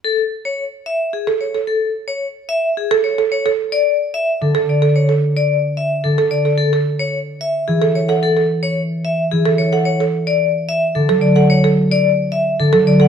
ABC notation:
X:1
M:3/4
L:1/16
Q:1/4=110
K:A
V:1 name="Vibraphone"
A z2 c z2 e z G z c z | A z2 c z2 e z G z c z | c z2 d z2 e z A z d z | c z2 d z2 e z A z d z |
A z2 c z2 e z G z c f | A z2 c z2 e z G z c f | c z2 d z2 e z A z d f | c z2 d z2 e z A z d f |]
V:2 name="Marimba"
z8 z A z A | z8 z A z A | z A z6 z A z A | z A z6 z A z A |
z A z6 z A z A | z A z6 z A z A | z A z6 z A z A | z A z6 z A z A |]
V:3 name="Harp" clef=bass
z12 | z12 | z8 D,4- | D,8 D,4 |
z8 E,4- | E,8 E,4 | z8 D, F,3- | F,8 D, F,3 |]